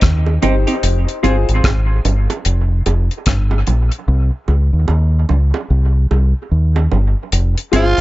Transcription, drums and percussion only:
0.01 kick, cross-stick, closed hi-hat
0.26 high bongo
0.42 closed hi-hat, low bongo
0.67 closed hi-hat
0.83 closed hi-hat
1.08 closed hi-hat
1.24 closed hi-hat, high bongo
1.49 closed hi-hat
1.64 kick, cross-stick, closed hi-hat, high bongo
2.05 closed hi-hat, low bongo
2.30 closed hi-hat, high bongo
2.45 closed hi-hat
2.86 closed hi-hat, high bongo
3.11 closed hi-hat
3.26 kick, cross-stick, closed hi-hat
3.51 high bongo
3.67 closed hi-hat, low bongo
3.92 closed hi-hat
4.48 high bongo
4.88 high bongo
5.29 low bongo
5.54 high bongo
6.11 high bongo
6.76 high bongo
6.92 low bongo
7.32 closed hi-hat
7.58 closed hi-hat
7.73 closed hi-hat, high bongo
7.98 closed hi-hat

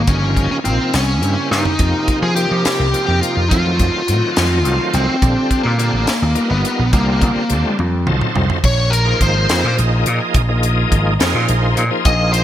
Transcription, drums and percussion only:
0.07 kick, closed hi-hat
0.36 kick, closed hi-hat
0.65 closed hi-hat
0.94 snare, closed hi-hat
1.23 closed hi-hat
1.52 snare
1.65 floor tom
1.79 kick, closed hi-hat
2.08 kick, closed hi-hat
2.37 closed hi-hat
2.65 snare, closed hi-hat
2.94 closed hi-hat
3.23 closed hi-hat
3.51 kick, closed hi-hat
3.79 kick, closed hi-hat
4.08 closed hi-hat
4.37 snare, closed hi-hat
4.65 closed hi-hat
4.94 closed hi-hat
5.22 kick, closed hi-hat
5.51 kick, closed hi-hat
5.79 closed hi-hat
6.07 snare, closed hi-hat
6.36 closed hi-hat
6.65 closed hi-hat
6.93 kick, closed hi-hat
7.21 kick, closed hi-hat
7.50 closed hi-hat
7.79 high tom
8.07 mid tom
8.21 mid tom
8.36 floor tom
8.50 floor tom
8.64 kick, crash
8.93 closed hi-hat
9.21 kick, closed hi-hat
9.49 snare, closed hi-hat
9.79 closed hi-hat
10.06 closed hi-hat
10.34 kick, closed hi-hat
10.63 closed hi-hat
10.92 kick, closed hi-hat
11.20 snare, closed hi-hat
11.48 closed hi-hat
11.77 closed hi-hat
12.05 kick, closed hi-hat
12.34 closed hi-hat

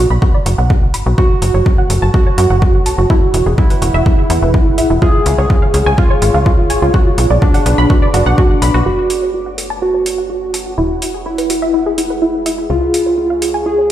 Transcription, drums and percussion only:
0.22 kick
0.46 open hi-hat
0.70 kick
0.94 open hi-hat
1.18 kick
1.42 open hi-hat
1.66 kick
1.90 open hi-hat
2.14 kick
2.38 open hi-hat
2.62 kick
2.86 open hi-hat
3.10 kick
3.34 open hi-hat
3.58 kick
3.70 open hi-hat
3.82 open hi-hat
4.06 kick
4.30 open hi-hat
4.54 kick
4.78 open hi-hat
5.02 kick
5.26 open hi-hat
5.50 kick
5.74 open hi-hat
5.98 kick
6.22 open hi-hat
6.46 kick
6.70 open hi-hat
6.94 kick
7.18 open hi-hat
7.42 kick
7.54 open hi-hat
7.66 open hi-hat
7.90 kick
8.14 open hi-hat
8.38 kick
8.62 open hi-hat
9.10 open hi-hat
9.58 open hi-hat
10.06 open hi-hat
10.54 open hi-hat
11.02 open hi-hat
11.38 open hi-hat
11.50 open hi-hat
11.98 open hi-hat
12.46 open hi-hat
12.94 open hi-hat
13.42 open hi-hat

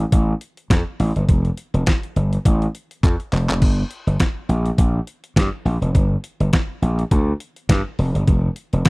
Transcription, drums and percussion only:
0.00 closed hi-hat
0.12 kick, closed hi-hat
0.41 closed hi-hat
0.57 closed hi-hat
0.70 kick, snare, closed hi-hat
1.00 open hi-hat
1.16 closed hi-hat
1.29 kick, closed hi-hat
1.45 closed hi-hat
1.57 closed hi-hat
1.74 closed hi-hat
1.86 kick, snare, closed hi-hat
2.03 closed hi-hat
2.16 closed hi-hat
2.33 closed hi-hat
2.45 kick, closed hi-hat
2.62 closed hi-hat
2.75 closed hi-hat
2.91 closed hi-hat
3.03 kick, clap, closed hi-hat
3.20 closed hi-hat
3.33 clap, open hi-hat
3.50 clap, closed hi-hat
3.62 kick, crash
3.91 closed hi-hat
4.07 closed hi-hat
4.20 kick, snare, closed hi-hat
4.49 closed hi-hat
4.66 closed hi-hat
4.78 kick, closed hi-hat
5.07 closed hi-hat
5.24 closed hi-hat
5.36 kick, snare, closed hi-hat
5.66 open hi-hat
5.82 closed hi-hat
5.95 kick, closed hi-hat
6.24 closed hi-hat
6.40 closed hi-hat
6.53 kick, snare, closed hi-hat
6.83 closed hi-hat
6.99 closed hi-hat
7.11 kick, closed hi-hat
7.40 closed hi-hat
7.56 closed hi-hat
7.69 kick, snare, closed hi-hat
7.99 open hi-hat
8.15 closed hi-hat
8.27 kick, closed hi-hat
8.56 closed hi-hat
8.73 closed hi-hat
8.85 kick, snare, closed hi-hat

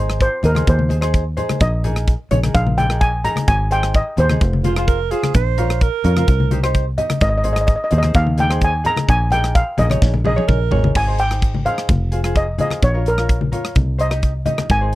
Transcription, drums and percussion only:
0.10 cross-stick, closed hi-hat
0.21 kick, closed hi-hat
0.43 closed hi-hat, low conga
0.55 cross-stick, closed hi-hat, high conga
0.67 kick, closed hi-hat
0.79 high conga
0.90 closed hi-hat, high conga
1.02 cross-stick, closed hi-hat
1.14 kick, closed hi-hat
1.37 closed hi-hat, low conga
1.49 cross-stick, closed hi-hat, high conga
1.60 kick, closed hi-hat
1.84 closed hi-hat, low conga
1.96 cross-stick, closed hi-hat
2.07 kick, closed hi-hat
2.31 closed hi-hat, high conga, low conga
2.43 cross-stick, closed hi-hat, high conga
2.55 kick, closed hi-hat
2.67 high conga
2.78 closed hi-hat, high conga, low conga
2.90 cross-stick, closed hi-hat
3.01 kick, closed hi-hat
3.24 closed hi-hat, low conga
3.36 cross-stick, closed hi-hat, high conga
3.48 kick, closed hi-hat
3.71 closed hi-hat
3.83 cross-stick, closed hi-hat
3.94 kick, closed hi-hat
4.17 closed hi-hat, low conga
4.29 cross-stick, closed hi-hat, high conga
4.41 kick, closed hi-hat
4.53 high conga
4.64 closed hi-hat, high conga
4.76 cross-stick, closed hi-hat
4.88 kick, closed hi-hat
5.11 closed hi-hat
5.23 cross-stick, closed hi-hat, high conga
5.34 kick, closed hi-hat
5.58 closed hi-hat, low conga
5.70 cross-stick, closed hi-hat
5.81 kick, closed hi-hat
6.04 closed hi-hat, low conga
6.17 cross-stick, closed hi-hat, high conga
6.28 kick, closed hi-hat
6.40 high conga
6.51 closed hi-hat, high conga
6.64 cross-stick, closed hi-hat
6.74 kick, closed hi-hat
6.98 closed hi-hat, low conga
7.10 cross-stick, closed hi-hat, high conga
7.21 kick, closed hi-hat
7.44 closed hi-hat, low conga
7.56 cross-stick, closed hi-hat
7.67 kick, closed hi-hat
7.91 closed hi-hat, low conga
8.03 cross-stick, closed hi-hat, high conga
8.14 kick, closed hi-hat
8.27 high conga
8.38 closed hi-hat, high conga
8.51 cross-stick, closed hi-hat
8.61 kick, closed hi-hat
8.85 closed hi-hat, low conga
8.97 cross-stick, closed hi-hat, high conga
9.09 kick, closed hi-hat
9.30 closed hi-hat, low conga
9.44 cross-stick, closed hi-hat
9.55 kick, closed hi-hat
9.78 closed hi-hat, high conga, low conga
9.90 cross-stick, closed hi-hat, high conga
10.02 kick, snare
10.14 high conga
10.24 high tom, high conga, low conga
10.38 high tom
10.48 kick, mid tom
10.71 floor tom, low conga
10.84 floor tom, high conga
10.95 kick, crash
11.18 closed hi-hat
11.31 cross-stick, closed hi-hat
11.42 kick, closed hi-hat
11.54 high conga
11.66 closed hi-hat, low conga
11.78 cross-stick, closed hi-hat
11.89 kick, closed hi-hat, high conga
12.12 closed hi-hat
12.24 cross-stick, closed hi-hat
12.35 kick, closed hi-hat
12.58 closed hi-hat, high conga, low conga
12.70 cross-stick, closed hi-hat, high conga
12.82 kick, closed hi-hat
13.06 closed hi-hat
13.18 cross-stick, closed hi-hat
13.29 kick, closed hi-hat
13.41 high conga
13.52 closed hi-hat, low conga
13.65 cross-stick, closed hi-hat
13.75 kick, closed hi-hat, high conga
13.99 closed hi-hat
14.11 cross-stick, closed hi-hat
14.23 kick, closed hi-hat
14.46 closed hi-hat, high conga, low conga
14.58 cross-stick, closed hi-hat, high conga
14.69 kick, closed hi-hat

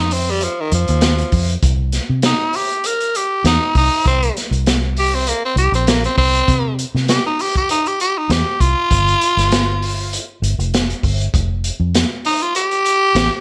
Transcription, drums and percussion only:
0.11 open hi-hat
0.41 closed hi-hat
0.72 closed hi-hat
0.88 closed hi-hat
1.01 snare, closed hi-hat
1.18 closed hi-hat
1.32 kick, open hi-hat
1.49 closed hi-hat
1.63 kick, closed hi-hat
1.92 snare, closed hi-hat
2.22 snare, closed hi-hat
2.53 open hi-hat
2.70 closed hi-hat
2.84 closed hi-hat
3.01 closed hi-hat
3.15 closed hi-hat
3.45 snare, closed hi-hat
3.75 kick, open hi-hat
4.06 kick, closed hi-hat
4.22 closed hi-hat
4.37 snare, closed hi-hat
4.53 closed hi-hat
4.66 snare, closed hi-hat
4.97 open hi-hat
5.27 closed hi-hat
5.57 closed hi-hat
5.74 closed hi-hat
5.87 snare, closed hi-hat
6.04 closed hi-hat
6.18 kick, open hi-hat
6.35 closed hi-hat
6.48 kick, closed hi-hat
6.79 closed hi-hat
6.96 snare
7.08 snare, closed hi-hat
7.39 open hi-hat
7.56 kick, closed hi-hat
7.69 closed hi-hat
7.86 closed hi-hat
8.00 closed hi-hat
8.30 snare, closed hi-hat
8.60 kick, closed hi-hat
8.91 kick, closed hi-hat
9.08 closed hi-hat
9.21 closed hi-hat
9.38 snare, closed hi-hat
9.52 snare, closed hi-hat
9.82 open hi-hat
10.13 closed hi-hat
10.44 closed hi-hat
10.60 closed hi-hat
10.74 snare, closed hi-hat
10.90 closed hi-hat
11.03 kick, open hi-hat
11.21 closed hi-hat
11.34 kick, closed hi-hat
11.64 closed hi-hat
11.95 snare, closed hi-hat
12.25 open hi-hat
12.41 closed hi-hat
12.55 closed hi-hat
12.71 closed hi-hat
12.85 closed hi-hat
13.16 snare, closed hi-hat

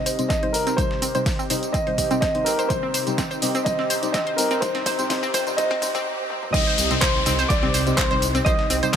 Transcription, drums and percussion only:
0.06 closed hi-hat, open hi-hat, tambourine
0.19 closed hi-hat, tambourine
0.30 kick, snare, closed hi-hat, tambourine
0.43 closed hi-hat
0.54 closed hi-hat, open hi-hat, tambourine
0.67 snare, closed hi-hat, tambourine
0.78 kick, closed hi-hat, tambourine
0.91 snare
1.02 closed hi-hat, open hi-hat, tambourine
1.15 closed hi-hat, tambourine
1.26 kick, snare, closed hi-hat, open hi-hat, tambourine
1.39 tambourine
1.50 closed hi-hat, open hi-hat, tambourine
1.63 closed hi-hat, tambourine
1.74 kick, closed hi-hat, tambourine
1.87 closed hi-hat
1.98 kick, closed hi-hat, open hi-hat, tambourine
2.11 closed hi-hat, tambourine
2.22 kick, snare, closed hi-hat, tambourine
2.35 closed hi-hat
2.46 closed hi-hat, open hi-hat, tambourine
2.59 closed hi-hat, tambourine
2.70 kick, closed hi-hat, tambourine
2.94 closed hi-hat, open hi-hat, tambourine
3.07 closed hi-hat, tambourine
3.18 kick, snare, closed hi-hat, tambourine
3.31 closed hi-hat, tambourine
3.42 closed hi-hat, open hi-hat, tambourine
3.55 closed hi-hat, tambourine
3.66 kick, closed hi-hat, tambourine
3.79 snare
3.90 closed hi-hat, open hi-hat, tambourine
4.03 closed hi-hat, tambourine
4.14 kick, snare, closed hi-hat, tambourine
4.27 closed hi-hat
4.38 closed hi-hat, open hi-hat, tambourine
4.51 snare, closed hi-hat, tambourine
4.62 kick, closed hi-hat, tambourine
4.75 snare, closed hi-hat
4.86 kick, closed hi-hat, open hi-hat, tambourine
4.99 closed hi-hat, tambourine
5.10 kick, snare, closed hi-hat, open hi-hat, tambourine
5.23 tambourine
5.34 kick, closed hi-hat, open hi-hat, tambourine
5.47 closed hi-hat, tambourine
5.58 kick, closed hi-hat, tambourine
5.71 kick, closed hi-hat
5.82 kick, closed hi-hat, open hi-hat, tambourine
5.95 kick, closed hi-hat, tambourine
6.30 high tom
6.43 mid tom
6.54 kick, closed hi-hat, crash, tambourine
6.78 closed hi-hat, open hi-hat, tambourine
6.91 closed hi-hat, tambourine
7.02 kick, snare, clap, closed hi-hat, tambourine
7.15 closed hi-hat
7.26 closed hi-hat, open hi-hat, tambourine
7.39 closed hi-hat, tambourine
7.50 kick, closed hi-hat, tambourine
7.63 snare
7.74 closed hi-hat, open hi-hat, tambourine
7.87 closed hi-hat, tambourine
7.98 kick, snare, clap, closed hi-hat, tambourine
8.11 closed hi-hat
8.22 closed hi-hat, open hi-hat, tambourine
8.35 snare, closed hi-hat, tambourine
8.46 kick, closed hi-hat, tambourine
8.59 snare
8.70 closed hi-hat, open hi-hat, tambourine
8.83 closed hi-hat, tambourine

